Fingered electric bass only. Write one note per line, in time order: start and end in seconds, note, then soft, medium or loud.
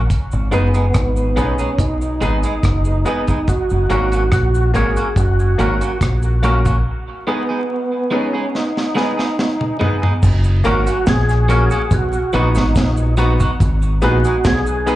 0.33 0.53 G#1 medium
0.53 0.92 F#1 medium
0.95 1.35 G#1 loud
1.38 1.58 B1 medium
1.79 2.19 B1 medium
2.22 2.42 G#1 medium
2.64 3.03 F#1 medium
3.71 3.89 F#1 medium
3.91 4.30 G#1 medium
4.33 4.72 A#1 medium
4.75 4.96 G#1 medium
5.17 5.56 F#1 loud
5.60 5.80 G#1 medium
6.01 6.82 A#1 medium
10.24 10.63 F#1 loud
10.66 10.86 G#1 medium
11.08 11.68 A#1 loud
11.92 12.12 B1 loud
12.34 12.55 A#1 medium
12.57 12.75 G#1 medium
12.76 13.36 A#1 medium
13.61 14.00 G#1 loud
14.03 14.24 A#1 loud
14.46 14.96 B1 loud